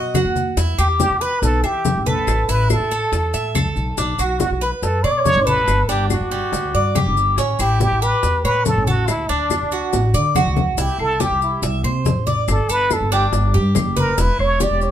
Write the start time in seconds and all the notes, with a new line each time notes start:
Already playing: B2 F#4 D#5
0.14 F#4, high bongo, low bongo, high conga, claves, maracas
0.25 D#2
0.36 high bongo, high conga, maracas
0.57 E2 E4, high bongo, maracas
0.78 E2 G4, high conga, claves, maracas
1.00 G4, high bongo, high conga, maracas
1.10 E2
1.21 B4, high bongo, high conga, maracas
1.42 B1 A4, high bongo, high conga, maracas
1.63 E3 G4 E5, high bongo, high conga, claves
1.85 high bongo, low bongo, high conga, maracas
1.95 A#1
2.06 A4 B4, high bongo, high conga, maracas
2.27 A1, high bongo, high conga, claves, maracas
2.48 A1 E4 B4, high conga, maracas
2.70 A4, high bongo, high conga, claves, maracas
2.80 A1
2.91 A4, high bongo, high conga, maracas
3.12 E2, high bongo, high conga, maracas
3.34 A2 E5, high bongo, high conga, maracas
3.55 C#2 A4, high bongo, low bongo, high conga, claves, maracas
3.76 B1, high bongo, maracas
3.97 B1 D4, high bongo, high conga, maracas
4.18 B1 F#4, high conga, claves, maracas
4.40 F#4, high bongo, high conga, maracas
4.50 B1
4.61 B4, high bongo, high conga, maracas
4.82 F#2 A4, high bongo, high conga, maracas
5.04 B2 C#5 D5, high bongo, high conga, claves
5.11 D5
5.18 C#5
5.25 high bongo, low bongo, high conga, maracas
5.35 A1
5.45 A4 B4, high bongo, high conga, maracas
5.67 G1, high bongo, high conga, claves, maracas
5.88 G1 D4 G4, high conga, maracas
6.10 F#4, high bongo, high conga, claves, maracas
6.20 G1
6.31 G3, high bongo, high conga, maracas
6.52 D2, high bongo, high conga, maracas
6.74 G2 D5, high bongo, high conga
6.95 G4, high bongo, low bongo, high conga, claves, maracas
7.06 G1
7.17 high bongo, maracas
7.38 A1 C#4, high bongo, high conga, maracas
7.59 A1 E4 G4, high conga, claves, maracas
7.80 G4, high bongo, high conga, maracas
7.91 A1
8.02 G4 B4, high bongo, high conga, maracas
8.23 E2, high bongo, high conga, maracas
8.44 A2 B4 C#5, high bongo, high conga, claves
8.66 A4, high bongo, low bongo, high conga, maracas
8.76 A1
8.87 F#4 A4, high bongo, high conga, maracas
9.08 D2 E4, high bongo, high conga, claves, maracas
9.29 D2 D4, high conga
9.50 high bongo, high conga, claves, maracas
9.61 D2
9.71 F#4, high bongo, high conga, maracas
9.92 A1, high bongo, high conga, maracas
10.14 D3 D5, high conga, maracas
10.35 F#4, low bongo, high conga, claves, maracas
10.46 D2
10.56 low bongo, high conga, maracas
10.77 C2 E4 G4, high bongo, high conga, maracas
10.98 C2 A4, high conga, claves
11.20 G4, high bongo, high conga, maracas
11.30 C2
11.42 E4, high bongo, maracas
11.62 C2 E5, high bongo, high conga, maracas
11.83 C3 C5, high bongo, high conga, claves
12.04 A1, high bongo, low bongo, high conga, maracas
12.27 D5, high bongo, high conga, maracas
12.48 G1 A4, high bongo, claves, maracas
12.69 G1 A4 B4, high conga, maracas
12.91 A4, high bongo, high conga, claves, maracas
13.00 G1
13.12 D4 G4, high bongo, high conga, maracas
13.32 G1, high bongo, high conga, maracas
13.54 G2 G4, high bongo, high conga
13.75 F#1, high bongo, low bongo, high conga, claves, maracas
13.97 A#4 B4, high bongo, high conga, maracas
14.18 E1 E4 B4, high bongo, high conga, maracas
14.39 E1 C#5, high conga, claves
14.60 G4 D5, high bongo, high conga, maracas
14.71 E1
14.81 C#5, high bongo, maracas